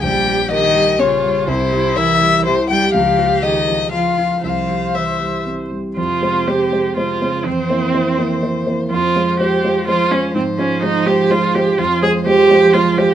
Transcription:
<<
  \new Staff \with { instrumentName = "Violin" } { \time 3/4 \key f \minor \tempo 4 = 123 g''4 ees''4 des''4 | c''4 e''4 c''8 g''8 | f''4 ees''4 f''4 | f''4 e''4 r4 |
c''2 c''4 | c''2. | c''2 c''4 | c''2. |
c''2. | }
  \new Staff \with { instrumentName = "Viola" } { \time 3/4 \key f \minor g'2 f'4 | e'2 g'4~ | g'2 f'4 | c''2~ c''8 r8 |
f'4 g'4 f'4 | c'2~ c'8 r8 | f'4 g'4 f'8 des'8 | c'8 des'8 ees'8 g'8 f'8 g'8 |
f'8 aes'8 g'4 f'8 g'8 | }
  \new Staff \with { instrumentName = "Grand piano" } { \time 3/4 \key f \minor bes,,8 g8 bes'8 g8 des'8 g8 | c,8 g8 bes'8 g8 e'8 g8 | des,8 f8 aes'8 f8 f'8 f8 | c,8 g8 c''8 g8 c'8 g8 |
f,8 <aes c' c''>8 <aes c' c''>8 <aes c' c''>8 <aes c' c''>8 <aes c' c''>8 | f,8 <bes e' c''>8 <bes e' c''>8 <bes e' c''>8 <bes e' c''>8 <bes e' c''>8 | f,8 <aes f' c''>8 <aes f' c''>8 <aes f' c''>8 <aes f' c''>8 <aes f' c''>8 | aes,8 <aes f' c''>8 <aes f' c''>8 <aes f' c''>8 <aes f' c''>8 <aes f' c''>8 |
f,8 <aes f' c''>8 <aes f' c''>8 <aes f' c''>8 <aes f' c''>8 <aes f' c''>8 | }
  \new Staff \with { instrumentName = "Cello" } { \clef bass \time 3/4 \key f \minor g4 ees4 des4 | c4 e4 c8 g8 | f4 ees4 f4 | f4 e4 r4 |
c2 c8 des8 | e2. | f2 f4 | f2. |
f2. | }
>>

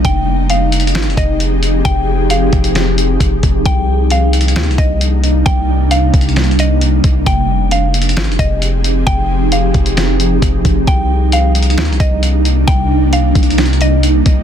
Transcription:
<<
  \new Staff \with { instrumentName = "Synth pluck" } { \time 4/4 \key c \minor \tempo 4 = 133 g''4 f''4. ees''8 r4 | g''4 f''2. | g''4 f''4. ees''8 r4 | g''4 f''4. ees''8 r4 |
g''4 f''4. ees''8 r4 | g''4 f''2. | g''4 f''4. ees''8 r4 | g''4 f''4. ees''8 r4 | }
  \new Staff \with { instrumentName = "Ambient pad" } { \time 4/4 \key c \minor <f c' ees' g' aes'>1~ | <f c' ees' g' aes'>1 | <c g bes d' ees'>1~ | <c g bes d' ees'>1 |
<f c' ees' g' aes'>1~ | <f c' ees' g' aes'>1 | <c g bes d'>1~ | <c g bes d'>1 | }
  \new Staff \with { instrumentName = "808-style bass" } { \clef bass \time 4/4 \key c \minor f,,2 aes,,16 f,,16 f,,4. | f,,4. f,,4. f,,8 f,,8 | c,2 ees,16 c,16 c,4. | c,4. c,2 c,8 |
f,,2 aes,,16 f,,16 f,,4. | f,,4. f,,4. f,,8 f,,8 | c,2 ees,16 c,16 c,4. | c,4. c,2 c,8 | }
  \new DrumStaff \with { instrumentName = "Drums" } \drummode { \time 4/4 <hh bd>4 \tuplet 3/2 { hh16 r16 r16 hh16 hh16 hh16 <hh sn>16 hh16 hh16 <hh bd>16 r16 r16 } hh8 hh8 | <hh bd>4 hh8 <hh hho bd>16 hh16 <hh sn>8 hh8 <hh bd>8 <hh bd>8 | <hh bd>4 \tuplet 3/2 { hh16 r16 r16 hh16 hh16 hh16 <hh sn>16 hh16 hh16 <hh bd>16 r16 r16 } hh8 hh8 | <hh bd>4 \tuplet 3/2 { hh16 r16 r16 <hh bd>16 hh16 hh16 <hh sn>16 hh16 hh16 hh16 r16 r16 } hh8 <hh bd>8 |
<hh bd>4 \tuplet 3/2 { hh16 r16 r16 hh16 hh16 hh16 <hh sn>16 hh16 hh16 <hh bd>16 r16 r16 } hh8 hh8 | <hh bd>4 hh8 <hh hho bd>16 hh16 <hh sn>8 hh8 <hh bd>8 <hh bd>8 | <hh bd>4 \tuplet 3/2 { hh16 r16 r16 hh16 hh16 hh16 <hh sn>16 hh16 hh16 <hh bd>16 r16 r16 } hh8 hh8 | <hh bd>4 \tuplet 3/2 { hh16 r16 r16 <hh bd>16 hh16 hh16 <hh sn>16 hh16 hh16 hh16 r16 r16 } hh8 <hh bd>8 | }
>>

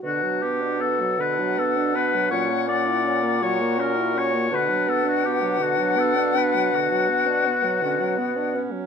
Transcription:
<<
  \new Staff \with { instrumentName = "Flute" } { \time 12/8 \key b \minor \tempo 4. = 54 fis''1. | fis''1~ fis''4. r8 | }
  \new Staff \with { instrumentName = "Oboe" } { \time 12/8 \key b \minor fis'8 g'8 a'8 b'8 a'8 b'8 cis''8 d''4 cis''8 ais'8 cis''8 | b'8 a'16 fis'16 g'8 fis'8 a'8 b'8 fis'2~ fis'8. r16 | }
  \new Staff \with { instrumentName = "Clarinet" } { \time 12/8 \key b \minor d'4. d'4. cis'4. fis'4. | d'4. d'2~ d'8 r8 cis'8 b8 cis'8 | }
  \new Staff \with { instrumentName = "French horn" } { \time 12/8 \key b \minor d16 fis16 b16 d'16 b16 fis16 d16 fis16 b16 d'16 b16 fis16 fis16 ais16 cis'16 e'16 cis'16 ais16 fis16 ais16 cis'16 e'16 cis'16 ais16 | d16 fis16 b16 d'16 b16 fis16 d16 fis16 b16 d'16 b16 fis16 d16 fis16 b16 d'16 b16 fis16 d16 fis16 b16 d'16 b16 fis16 | }
  \new Staff \with { instrumentName = "Bassoon" } { \clef bass \time 12/8 \key b \minor b,2. ais,2. | b,1~ b,4. r8 | }
>>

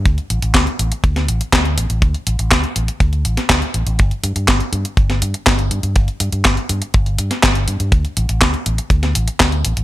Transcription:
<<
  \new Staff \with { instrumentName = "Fingered electric bass" } { \clef bass \time 4/4 \key d \phrygian \tempo 4 = 122 d,16 r16 a,,16 a,,16 d,16 r16 a,,16 r16 d,8 a,,16 r16 d,8 a,,16 a,,16 | d,16 r16 a,,16 a,,16 d,16 r16 a,,16 r16 d,8 a,,16 r16 d,16 r16 a,,16 a,,16 | g,,16 r16 g,16 g,16 g,,16 r16 g,16 r16 g,,8 g,16 r16 g,,8 g,16 g,16 | g,,16 r16 g,16 g,16 g,,16 r16 g,16 r16 g,,8 g,16 r16 g,,8 g,16 g,16 |
d,16 r16 a,,16 a,,16 d,16 r16 a,,16 r16 d,8 a,,16 r16 d,8 a,,16 a,,16 | }
  \new DrumStaff \with { instrumentName = "Drums" } \drummode { \time 4/4 <hh bd>16 hh16 hh16 hh16 <hc hh bd sn>16 hh16 hh16 hh16 <hh bd>16 <hh sn>16 hh16 hh16 <hc hh bd sn>16 hh16 hh16 hh16 | <hh bd>16 hh16 hh16 hh16 <hc hh bd sn>16 hh16 hh16 hh16 <hh bd>16 hh16 hh16 <hh sn>16 <hc hh bd sn>16 hh16 hh16 hh16 | <hh bd>16 hh16 hh16 hh16 <hc hh bd sn>16 hh16 hh16 hh16 <hh bd>16 <hh sn>16 hh16 hh16 <hc hh bd sn>16 hh16 hh16 hh16 | <hh bd>16 hh16 hh16 hh16 <hc hh bd sn>16 hh16 hh16 hh16 <hh bd>16 hh16 hh16 <hh sn>16 <hc hh bd sn>16 hh16 hh16 hh16 |
<hh bd>16 hh16 hh16 hh16 <hc hh bd sn>16 hh16 hh16 hh16 <hh bd>16 <hh sn>16 hh16 hh16 <hc hh bd sn>16 hh16 hh16 hh16 | }
>>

